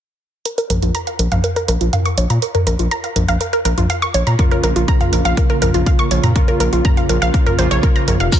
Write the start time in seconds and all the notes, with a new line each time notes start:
0.45 A#4, closed hi-hat
0.58 A#4, closed hi-hat
0.70 A#1 A#4, closed hi-hat, mid tom
0.82 A#1 F4, closed hi-hat
0.95 A#5, closed hi-hat
1.07 F5, closed hi-hat
1.19 A#1 A#4, closed hi-hat
1.32 A#1 F5, closed hi-hat, mid tom
1.44 A#4, closed hi-hat
1.56 A#4, closed hi-hat
1.68 A#1 A#4, closed hi-hat
1.81 A#1 F4, closed hi-hat
1.93 F5, closed hi-hat, mid tom
2.05 C#6, closed hi-hat
2.18 A#1 C#5, closed hi-hat
2.30 A#2 A#5, closed hi-hat
2.42 A#4, closed hi-hat
2.55 A#4, closed hi-hat, mid tom
2.67 A#1 A#4, closed hi-hat
2.79 A#1 F4, closed hi-hat
2.91 A#5, closed hi-hat
3.04 F5, closed hi-hat
3.16 A#1 A#4, closed hi-hat, mid tom
3.28 A#1 F5, closed hi-hat
3.41 A#4, closed hi-hat
3.53 A#4, closed hi-hat
3.65 A#1 A#4, closed hi-hat
3.78 A#1 F4, closed hi-hat, mid tom
3.90 F5, closed hi-hat
4.02 C#6, closed hi-hat
4.14 A#1 C#5, closed hi-hat
4.27 A#2 A#5, closed hi-hat
4.39 C#3 A#3 F4 A#4, kick, closed hi-hat, mid tom
4.51 A#4, closed hi-hat
4.63 A#1 A#4, closed hi-hat
4.76 A#1 F4, closed hi-hat
4.88 A#5, kick, closed hi-hat
5.01 F5, closed hi-hat, mid tom
5.13 A#1 A#4, closed hi-hat
5.25 A#1 F5, closed hi-hat
5.37 A#4, kick, closed hi-hat
5.50 A#4, closed hi-hat
5.62 A#1 A#4, closed hi-hat, mid tom
5.74 A#1 F4, closed hi-hat
5.86 F5, kick, closed hi-hat
5.99 C#6, closed hi-hat
6.11 A#1 C#3 A#3 F4 C#5, closed hi-hat
6.24 A#2 A#5, closed hi-hat, mid tom
6.36 C#3 A#3 F4 A#4, kick, closed hi-hat
6.48 A#4, closed hi-hat
6.60 A#1 A#4, closed hi-hat
6.73 A#1 F4, closed hi-hat
6.85 A#5, kick, closed hi-hat, mid tom
6.97 F5, closed hi-hat
7.09 A#1 A#4, closed hi-hat
7.22 A#1 F5, closed hi-hat
7.34 A#4, kick, closed hi-hat
7.46 A#4, closed hi-hat, mid tom
7.59 A#1 C#3 A#3 F4 C5, closed hi-hat
7.71 A#1 C#3 A#3 F4 C#5, closed hi-hat
7.83 A#4, kick, closed hi-hat
7.96 A#5, closed hi-hat
8.08 A#1 A#4, closed hi-hat, mid tom
8.20 F1 F5, closed hi-hat
8.32 C#3 F3 A#3 C#4 F4 A#4, kick, closed hi-hat, crash, shekere